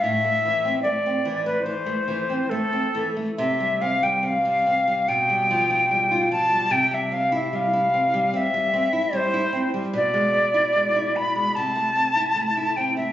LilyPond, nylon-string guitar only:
\new Staff \with { instrumentName = "Nylon-string guitar" } { \time 4/4 \key a \minor \tempo 4 = 74 a,16 a16 e16 c'16 a16 c'16 e16 a16 e16 a16 e16 c'16 a16 c'16 e16 a16 | c16 g16 c'16 g16 c'16 g16 c'16 g16 b,16 g16 f16 f'16 g16 f'16 f16 g16 | c16 g16 c'16 e'16 g16 e'16 c'16 g16 c'16 g16 c'16 e'16 g16 e'16 c'16 g16 | b,16 gis16 b16 e'16 gis16 e'16 b16 gis16 c16 a16 c'16 e'16 a16 e'16 c'16 a16 | }